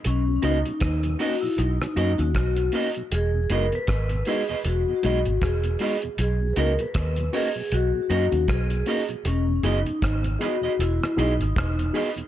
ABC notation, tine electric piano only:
X:1
M:4/4
L:1/16
Q:"Swing 16ths" 1/4=78
K:B
V:1 name="Tine electric piano"
z2 [A,CDF] z3 [A,CDF] z3 [A,CDF] [A,CDF] z2 [A,CDF] [DF] | z2 [G,B,DF] z3 [G,B,DF] z3 [G,B,DF] z3 [G,B,DF] z | z2 [A,CDF] z3 [A,CDF] z3 [A,CDF] [A,CDF] z2 [A,CDF] z | z2 [B,DFG] z3 [B,DFG] z3 [B,DFG] z3 [B,DFG] z |]